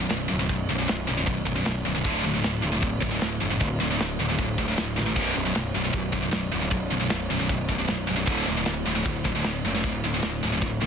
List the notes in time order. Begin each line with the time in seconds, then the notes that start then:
0.10 B0 B1 F#2, snare, crash
0.28 D1 B1 F#2, crash
0.39 B1 F#2
0.49 B0 B1 F#2, kick, crash
0.69 B0 B1 F#2, crash
0.78 B1 F#2
0.88 B0 B1 F#2, snare, crash
1.07 B0 B1 F#2, crash
1.17 B1 F#2
1.26 B0 B1 F#2, kick, crash
1.46 B0 B1 F#2, kick, crash
1.56 B1 F#2
1.65 B0 B1 F#2, snare, crash
1.85 B0 B1 F#2, crash
1.95 B1 F#2
2.04 D1 D2 A2 D3, kick, crash
2.23 D1 D2 A2, crash
2.34 D2 A2
2.44 D1 D2 A2, snare, crash
2.62 D1 D2 A2, crash
2.72 D2 A2
2.82 D1 D2 A2, kick, crash
3.01 D1 D2 A2, kick, crash
3.11 D2 A2
3.21 D1 D2 A2, snare, crash
3.41 F#1 D2 A2, crash
3.51 D2 A2
3.60 D1 D2 A2, kick, crash
3.80 D1 D2 A2, crash
3.90 D2 A2
3.99 D1 D2 A2, snare, crash
4.19 D1 D2 A2, crash
4.29 D2 A2
4.38 D1 D2 A2, kick, crash
4.58 D1 D2 A2, kick, crash
4.68 D2 A2
4.78 D1 D2 A2, snare, crash
4.96 A1 D2 A2, snare
5.06 D2 A2
5.16 B0 B1 F#2 B2, kick, crash
5.35 B0 B1 F#2, crash
5.45 B1 F#2
5.55 B0 B1 F#2, snare, crash
5.74 B0 B1 F#2, crash
5.84 B1 F#2
5.92 B0 B1 F#2, kick, crash
6.12 B0 B1 F#2, kick, crash
6.22 B1 F#2
6.31 B0 B1 F#2, snare, crash
6.52 D1 B1 F#2, crash
6.62 B1 F#2
6.71 B0 B1 F#2, kick, crash
6.90 B0 B1 F#2, crash
7.00 B1 F#2
7.10 B0 B1 F#2, snare, crash
7.30 B0 B1 F#2, crash
7.39 B1 F#2
7.49 B0 B1 F#2, kick, crash
7.69 B0 B1 F#2, kick, crash
7.78 B1 F#2
7.88 B0 B1 F#2, snare, crash
8.07 B0 B1 F#2, crash
8.16 B1 F#2
8.26 D1 D2 A2 D3, kick, crash
8.46 D1 D2 A2, crash
8.57 D2 A2
8.65 D1 D2 A2, snare, crash
8.85 D1 D2 A2, crash
8.95 D2 A2
9.04 D1 D2 A2, kick, crash
9.24 D1 D2 A2, kick, crash
9.35 D2 A2
9.44 D1 D2 A2, snare, crash
9.64 F#1 D2 A2, crash
9.74 D2 A2, snare
9.84 D1 D2 A2, kick, crash
10.03 D1 D2 A2, crash
10.14 D2 A2
10.22 D1 D2 A2, snare, crash
10.43 D1 D2 A2, crash
10.52 D2 A2
10.62 D1 D2 A2, kick, snare
10.81 D1 D2 A2, high tom